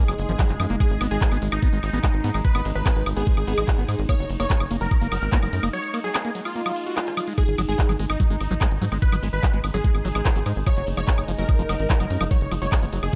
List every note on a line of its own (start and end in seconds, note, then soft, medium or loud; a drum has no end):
0.00 7.37 G#3 medium
0.00 7.37 D#4 medium
0.00 0.72 G#4 loud
0.08 0.15 F#1 medium
0.08 0.14 F#3 medium
0.08 closed hi-hat medium
0.08 high woodblock medium
0.19 0.26 F#1 loud
0.19 open hi-hat loud
0.29 0.36 G#1 loud
0.29 0.32 F3 loud
0.29 closed hi-hat medium
0.39 0.45 F#3 loud
0.39 kick loud
0.39 clap loud
0.39 closed hi-hat medium
0.39 high woodblock soft
0.49 0.56 F#1 medium
0.49 0.53 F#3 medium
0.49 clap soft
0.49 closed hi-hat medium
0.60 0.67 F#2 loud
0.60 0.66 F3 medium
0.60 open hi-hat medium
0.60 high woodblock medium
0.70 0.77 F#1 medium
0.70 0.76 A#3 loud
0.70 closed hi-hat soft
0.80 0.86 G#3 medium
0.80 1.01 G#4 loud
0.80 kick loud
0.80 closed hi-hat medium
0.80 high woodblock soft
0.91 0.98 G#1 medium
0.91 closed hi-hat medium
1.01 1.08 G#1 loud
1.01 1.07 B3 loud
1.01 open hi-hat loud
1.01 ride medium
1.01 high woodblock medium
1.11 1.18 G#1 medium
1.11 1.17 G#3 medium
1.11 1.38 G#4 loud
1.11 closed hi-hat soft
1.21 kick loud
1.21 clap loud
1.21 closed hi-hat medium
1.32 1.39 G#1 medium
1.32 1.38 B3 loud
1.32 closed hi-hat medium
1.32 high woodblock soft
1.42 1.49 G#1 loud
1.42 1.48 G#3 medium
1.42 open hi-hat medium
1.42 ride medium
1.52 1.59 G#1 medium
1.52 2.36 D#4 loud
1.52 closed hi-hat medium
1.52 high woodblock medium
1.62 1.68 B3 loud
1.62 kick loud
1.62 closed hi-hat medium
1.73 1.80 G#1 medium
1.73 1.79 G#3 medium
1.73 closed hi-hat medium
1.83 1.90 G#1 loud
1.83 open hi-hat loud
1.83 ride medium
1.83 high woodblock soft
1.93 2.00 A1 medium
1.93 1.99 B3 loud
1.93 closed hi-hat soft
2.04 2.09 G#3 medium
2.04 kick loud
2.04 clap loud
2.04 closed hi-hat medium
2.04 high woodblock medium
2.14 2.21 G#1 medium
2.14 closed hi-hat medium
2.24 2.31 G#2 loud
2.24 2.30 B3 loud
2.24 open hi-hat loud
2.24 ride medium
2.34 2.41 G#1 medium
2.34 2.40 G#3 medium
2.34 closed hi-hat medium
2.34 high woodblock soft
2.45 2.65 B4 loud
2.45 kick loud
2.45 closed hi-hat medium
2.55 2.62 G#1 medium
2.55 2.61 B3 loud
2.55 closed hi-hat soft
2.55 high woodblock medium
2.65 2.72 G#1 loud
2.65 2.71 G#3 medium
2.65 open hi-hat loud
2.65 ride medium
2.75 2.83 G#1 medium
2.75 3.03 B4 loud
2.75 closed hi-hat medium
2.86 2.92 B3 loud
2.86 kick loud
2.86 clap loud
2.86 closed hi-hat medium
2.86 high woodblock soft
2.96 3.03 G#1 medium
2.96 3.02 G#3 medium
2.96 closed hi-hat medium
3.06 3.13 G#1 loud
3.06 open hi-hat medium
3.06 ride medium
3.06 high woodblock medium
3.16 3.24 G#1 medium
3.16 3.22 B3 loud
3.16 4.01 G#4 loud
3.16 closed hi-hat medium
3.27 3.33 G#3 medium
3.27 kick loud
3.27 closed hi-hat medium
3.37 3.44 G#1 medium
3.37 closed hi-hat medium
3.37 high woodblock soft
3.47 3.54 G#1 loud
3.47 3.53 B3 loud
3.47 open hi-hat loud
3.47 ride medium
3.58 3.65 A1 medium
3.58 3.64 G#3 medium
3.58 closed hi-hat soft
3.58 high woodblock medium
3.68 kick loud
3.68 clap loud
3.68 closed hi-hat medium
3.78 3.85 G#1 medium
3.78 3.84 B3 loud
3.78 closed hi-hat medium
3.88 3.96 G#2 loud
3.88 3.94 G#3 medium
3.88 open hi-hat medium
3.88 ride medium
3.88 high woodblock soft
3.99 4.06 G#1 loud
3.99 closed hi-hat medium
4.09 4.15 A#3 loud
4.09 4.30 C#5 loud
4.09 kick loud
4.09 closed hi-hat medium
4.09 high woodblock medium
4.19 4.26 F#1 medium
4.19 4.25 F#3 medium
4.19 closed hi-hat medium
4.30 4.37 F#1 loud
4.30 open hi-hat loud
4.30 ride medium
4.40 4.47 F#1 medium
4.40 4.46 A#3 loud
4.40 4.67 C#5 loud
4.40 closed hi-hat medium
4.40 high woodblock soft
4.50 4.56 F#3 medium
4.50 kick loud
4.50 clap loud
4.50 closed hi-hat medium
4.60 4.67 F#1 medium
4.60 closed hi-hat medium
4.60 high woodblock medium
4.71 4.78 F#1 loud
4.71 4.77 A#3 loud
4.71 open hi-hat medium
4.71 ride medium
4.81 4.88 F#1 medium
4.81 4.87 F#3 medium
4.81 5.65 A#4 loud
4.81 closed hi-hat medium
4.91 kick loud
4.91 closed hi-hat medium
4.91 high woodblock soft
5.01 5.09 F#1 medium
5.01 5.07 A#3 loud
5.01 closed hi-hat medium
5.12 5.19 F#1 loud
5.12 5.18 F#3 medium
5.12 open hi-hat loud
5.12 ride medium
5.12 high woodblock medium
5.22 5.29 G#1 loud
5.22 closed hi-hat medium
5.32 5.38 A#3 loud
5.32 kick loud
5.32 clap loud
5.32 closed hi-hat medium
5.43 5.50 F#1 medium
5.43 5.48 F#3 medium
5.43 closed hi-hat medium
5.43 high woodblock soft
5.53 5.60 F#2 loud
5.53 open hi-hat medium
5.53 ride medium
5.63 5.70 F#1 medium
5.63 5.69 A#3 loud
5.63 closed hi-hat medium
5.63 high woodblock medium
5.73 5.79 F#3 medium
5.73 5.94 C#5 loud
5.73 closed hi-hat medium
5.84 closed hi-hat medium
5.94 6.00 A#3 loud
5.94 open hi-hat loud
5.94 ride medium
5.94 high woodblock soft
6.04 6.10 F#3 medium
6.04 6.32 G#4 loud
6.04 closed hi-hat medium
6.14 clap loud
6.14 closed hi-hat medium
6.14 high woodblock medium
6.25 6.31 A#3 loud
6.25 closed hi-hat medium
6.35 6.41 F#3 medium
6.35 open hi-hat medium
6.35 ride medium
6.45 7.30 F4 loud
6.45 closed hi-hat medium
6.45 high woodblock soft
6.56 6.62 A#3 loud
6.56 closed hi-hat medium
6.66 6.72 F#3 medium
6.66 closed hi-hat medium
6.66 high woodblock medium
6.76 open hi-hat loud
6.76 ride medium
6.86 6.95 F#4 medium
6.86 closed hi-hat medium
6.97 7.00 G#3 medium
6.97 clap loud
6.97 closed hi-hat medium
6.97 high woodblock soft
7.07 clap soft
7.07 closed hi-hat medium
7.17 7.21 F#3 medium
7.17 open hi-hat medium
7.17 ride medium
7.17 high woodblock medium
7.27 7.33 G#3 medium
7.27 closed hi-hat medium
7.38 7.44 G#3 medium
7.38 13.16 G#3 medium
7.38 13.16 D#4 medium
7.38 7.58 G#4 loud
7.38 kick loud
7.38 closed hi-hat medium
7.38 high woodblock soft
7.48 7.55 G#1 medium
7.48 closed hi-hat medium
7.58 7.65 G#1 loud
7.58 7.62 F#3 loud
7.58 open hi-hat loud
7.58 ride medium
7.58 high woodblock medium
7.69 7.76 G#1 medium
7.69 7.75 G#3 medium
7.69 7.96 G#4 loud
7.69 closed hi-hat medium
7.79 kick loud
7.79 clap loud
7.79 closed hi-hat medium
7.89 7.96 G#1 medium
7.89 7.93 F#3 loud
7.89 closed hi-hat medium
7.89 high woodblock soft
7.99 8.06 G#1 loud
7.99 8.05 G#3 medium
7.99 open hi-hat medium
7.99 ride medium
8.10 8.17 G#1 medium
8.10 8.94 D#4 loud
8.10 closed hi-hat medium
8.10 high woodblock medium
8.20 8.24 F#3 loud
8.20 kick loud
8.20 closed hi-hat medium
8.30 8.37 G#1 medium
8.30 8.36 G#3 medium
8.30 closed hi-hat medium
8.41 8.48 G#1 loud
8.41 open hi-hat loud
8.41 ride medium
8.41 high woodblock soft
8.51 8.58 A1 medium
8.51 8.54 F#3 loud
8.51 closed hi-hat medium
8.61 8.67 G#3 medium
8.61 kick loud
8.61 clap loud
8.61 closed hi-hat medium
8.61 high woodblock medium
8.71 8.78 G#1 medium
8.71 closed hi-hat medium
8.82 8.89 G#2 loud
8.82 8.85 F#3 loud
8.82 open hi-hat medium
8.82 ride medium
8.92 8.99 G#1 medium
8.92 8.98 G#3 medium
8.92 closed hi-hat medium
8.92 high woodblock soft
9.02 9.23 B4 loud
9.02 kick loud
9.02 closed hi-hat medium
9.12 9.20 G#1 medium
9.12 9.16 F#3 loud
9.12 closed hi-hat medium
9.12 high woodblock medium
9.23 9.30 G#1 loud
9.23 9.29 G#3 medium
9.23 open hi-hat loud
9.23 ride medium
9.33 9.40 G#1 medium
9.33 9.60 B4 medium
9.33 closed hi-hat medium
9.43 9.47 F#3 loud
9.43 kick loud
9.43 clap loud
9.43 closed hi-hat medium
9.43 high woodblock soft
9.54 9.61 G#1 medium
9.54 9.59 G#3 medium
9.54 closed hi-hat medium
9.64 9.71 G#1 loud
9.64 open hi-hat loud
9.64 ride medium
9.64 high woodblock medium
9.74 9.81 G#1 medium
9.74 9.78 F#3 loud
9.74 10.58 G#4 loud
9.74 closed hi-hat medium
9.84 9.90 G#3 medium
9.84 kick loud
9.84 closed hi-hat medium
9.95 10.02 G#1 medium
9.95 closed hi-hat medium
9.95 high woodblock soft
10.05 10.12 G#1 loud
10.05 10.08 F#3 loud
10.05 open hi-hat loud
10.05 ride medium
10.15 10.22 A1 loud
10.15 10.21 G#3 medium
10.15 closed hi-hat soft
10.15 high woodblock medium
10.25 kick loud
10.25 clap loud
10.25 closed hi-hat medium
10.36 10.43 G#1 medium
10.36 10.39 F#3 loud
10.36 closed hi-hat medium
10.46 10.53 G#2 loud
10.46 10.52 G#3 medium
10.46 open hi-hat medium
10.46 ride medium
10.46 high woodblock soft
10.56 10.63 G#1 loud
10.56 closed hi-hat medium
10.66 10.70 F3 loud
10.66 10.87 C#5 loud
10.66 kick loud
10.66 closed hi-hat medium
10.66 high woodblock medium
10.77 10.84 F#1 medium
10.77 10.83 F#3 medium
10.77 closed hi-hat medium
10.87 10.94 F#1 loud
10.87 open hi-hat loud
10.87 ride medium
10.97 11.04 F#1 medium
10.97 11.01 F3 loud
10.97 11.25 C#5 loud
10.97 closed hi-hat medium
10.97 high woodblock soft
11.08 11.14 F#3 medium
11.08 kick loud
11.08 clap loud
11.08 closed hi-hat medium
11.18 11.25 F#1 medium
11.18 closed hi-hat medium
11.18 high woodblock medium
11.28 11.35 F#1 loud
11.28 11.32 F3 loud
11.28 open hi-hat loud
11.28 ride medium
11.38 11.46 F#1 medium
11.38 11.44 F#3 medium
11.38 12.23 A#4 loud
11.38 closed hi-hat medium
11.49 kick loud
11.49 closed hi-hat medium
11.49 high woodblock soft
11.59 11.66 F#1 medium
11.59 11.63 F3 loud
11.59 closed hi-hat medium
11.69 11.76 F#1 loud
11.69 11.75 F#3 medium
11.69 open hi-hat loud
11.69 ride medium
11.69 high woodblock medium
11.80 11.87 G#1 medium
11.80 closed hi-hat medium
11.90 11.93 F3 loud
11.90 kick loud
11.90 clap loud
11.90 closed hi-hat medium
12.00 12.07 F#1 medium
12.00 12.06 F#3 medium
12.00 closed hi-hat medium
12.00 high woodblock soft
12.10 12.17 F#2 loud
12.10 open hi-hat loud
12.10 ride medium
12.21 12.28 F#1 medium
12.21 12.24 F3 loud
12.21 closed hi-hat medium
12.21 high woodblock medium
12.31 12.37 F#3 medium
12.31 12.51 C#5 loud
12.31 kick loud
12.31 closed hi-hat medium
12.41 12.48 F#1 medium
12.41 closed hi-hat medium
12.51 12.59 F#1 loud
12.51 12.55 F3 loud
12.51 open hi-hat loud
12.51 ride medium
12.51 high woodblock soft
12.62 12.69 F#1 medium
12.62 12.68 F#3 medium
12.62 12.89 C#5 loud
12.62 closed hi-hat medium
12.72 kick loud
12.72 clap loud
12.72 closed hi-hat medium
12.72 high woodblock medium
12.82 12.89 F#1 medium
12.82 12.86 F3 loud
12.82 closed hi-hat medium
12.93 13.00 F#1 loud
12.93 12.99 F#3 medium
12.93 open hi-hat loud
12.93 ride medium
13.03 13.10 F#1 medium
13.03 13.16 G#4 loud
13.03 closed hi-hat medium
13.03 high woodblock soft